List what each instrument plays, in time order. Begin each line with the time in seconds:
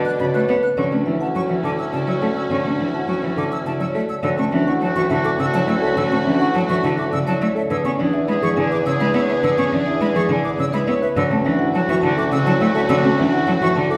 Already playing: bassoon B2, violin section D4 A4, oboe D4
0.05 marimba D5, flute F#6
0.19 cello C#3, grand piano F#4, marimba C#5, flute B5
0.34 cello A3, marimba B4, grand piano C#5, flute F#6
0.48 cello B3, grand piano B4, marimba C#5, flute F#5
0.63 marimba B4, flute F#6
0.77 bassoon D2, cello D3, violin section C#4 F#4, oboe C#4, grand piano C#4, marimba C#5, flute C#6
0.91 cello A3, grand piano D4, marimba A5
1.06 cello E3, grand piano E4, marimba E5
1.20 marimba F#5, flute A5
1.35 cello F#3, grand piano F#4, marimba C#5, flute C#6
1.49 cello E3, grand piano E4, marimba E5
1.63 cello D3, grand piano A4, marimba A5, flute D6
1.78 marimba E5, flute E6
1.93 cello C#3, grand piano E4, marimba D5, flute A5
2.06 cello F#3, grand piano C#5, marimba C#5, flute E6
2.21 cello A3, grand piano A4, marimba D5, flute E5
2.36 marimba C#5, flute E6
2.50 cello D3, grand piano C#4, marimba C#5, flute C#6
2.65 cello A3, grand piano D4, marimba A5
2.79 cello E3, grand piano E4, marimba E5
2.94 marimba F#5, flute A5
3.08 cello F#3, grand piano F#4, marimba C#5, flute C#6
3.22 cello E3, grand piano E4, marimba E5
3.36 cello D3, grand piano A4, marimba A5, flute D6
3.51 marimba E5, flute E6
3.66 cello C#3, grand piano E4, marimba D5, flute A5
3.80 cello F#3, grand piano C#5, marimba C#5, flute E6
3.94 cello A3, grand piano A4, marimba D5, flute E5
4.09 marimba C#5, flute E6
4.23 bassoon D2, cello D3, violin section C#4 F#4, oboe F#4, marimba C#5, flute E6
4.37 cello A3, grand piano C#4, marimba A5, flute C#6
4.51 cello E3, grand piano D4, oboe F#4, marimba E5
4.67 grand piano E4, marimba F#5, flute C#6
4.81 cello F#3, oboe F#4, marimba C#5, flute A5
4.96 cello E3, grand piano F#4, marimba E5, flute C#6
5.10 cello D3, grand piano E4, flute E5, marimba A5
5.14 oboe F#4
5.25 grand piano A4, marimba E5, flute D6
5.39 cello C#3, marimba D5, flute E6
5.44 oboe F#4
5.54 cello F#3, grand piano E4, marimba C#5, flute A5
5.68 cello A3, grand piano C#5, marimba D5, flute E6
5.75 oboe F#4
5.82 grand piano A4, marimba C#5, flute E5
5.97 cello D3, marimba C#5, flute E6
6.05 oboe F#4
6.11 cello A3, grand piano C#4, marimba A5, flute C#6
6.25 cello E3, grand piano D4, marimba E5
6.35 oboe F#4
6.40 grand piano E4, marimba F#5, flute C#6
6.54 cello F#3, marimba C#5, flute A5
6.65 cello E3, oboe F#4, grand piano F#4, marimba E5, flute C#6
6.83 cello D3, grand piano E4, flute E5, marimba A5
6.95 oboe F#4, grand piano A4, marimba E5, flute D6
7.12 cello C#3, marimba D5, flute E6
7.26 cello F#3, grand piano E4, oboe F#4, marimba C#5, flute A5
7.41 cello A3, grand piano C#5, marimba D5, flute E6
7.55 grand piano A4, marimba C#5, flute E5
7.70 bassoon E2, cello D3, violin section D4 G#4, oboe G#4, marimba B4, flute E6
7.84 cello B3, grand piano C#4, marimba G#5, flute C#6
7.99 cello E3, grand piano D4, oboe G#4, marimba D5
8.13 grand piano E4, marimba E5
8.28 cello G#3, oboe G#4, marimba B4, flute B5
8.42 cello E3, grand piano G#4, marimba D5, flute C#6
8.56 cello D3, grand piano E4, marimba G#5
8.61 oboe G#4
8.71 grand piano B4, marimba D5, flute D6
8.86 cello C#3, marimba C#5, flute E6
8.91 oboe G#4
8.99 cello G#3, grand piano E4, marimba B4, flute B5
9.14 cello B3, grand piano C#5, marimba C#5, flute E6
9.21 oboe G#4
9.28 grand piano B4, marimba B4, flute E5
9.43 cello D3, marimba B4, flute E6
9.51 oboe G#4
9.57 cello B3, grand piano C#4, marimba G#5, flute C#6
9.72 cello E3, grand piano D4, marimba D5
9.81 oboe G#4
9.86 grand piano E4, marimba E5
10.00 cello G#3, marimba B4, flute B5
10.12 cello E3, oboe G#4, grand piano G#4, marimba D5, flute C#6
10.29 cello D3, grand piano E4, marimba G#5
10.42 oboe G#4, grand piano B4, marimba D5, flute D6
10.58 cello C#3, marimba C#5, flute E6
10.71 cello G#3, grand piano E4, oboe G#4, marimba B4, flute B5
10.86 cello B3, marimba C#5, grand piano C#5, flute E6
11.01 marimba B4, grand piano B4, flute E5
11.15 bassoon D2, cello D3, violin section C#4 F#4, oboe F#4, marimba C#5, flute E6
11.30 cello A3, grand piano C#4, marimba A5
11.44 cello E3, grand piano D4, oboe F#4, marimba E5
11.59 grand piano E4, marimba F#5
11.73 cello F#3, oboe F#4, marimba C#5, flute A5
11.88 cello E3, grand piano F#4, marimba E5, flute C#6
12.02 cello D3, grand piano E4, marimba A5
12.07 oboe F#4
12.16 grand piano A4, marimba E5, flute D6
12.31 cello C#3, marimba D5, flute E6
12.37 oboe F#4
12.46 cello F#3, grand piano E4, marimba C#5, flute A5
12.60 cello A3, grand piano C#5, marimba D5, flute E6
12.66 oboe F#4
12.75 grand piano A4, marimba C#5, flute E5
12.89 cello D3, marimba C#5, flute E6
12.97 oboe F#4
13.03 cello A3, grand piano C#4, marimba A5
13.18 cello E3, grand piano D4, marimba E5
13.27 oboe F#4
13.32 grand piano E4, marimba F#5
13.46 cello F#3, marimba C#5, flute A5
13.57 oboe F#4, grand piano F#4, marimba E5
13.62 cello E3, flute C#6
13.75 cello D3, grand piano E4, marimba A5
13.88 oboe F#4, grand piano A4, marimba E5, flute D6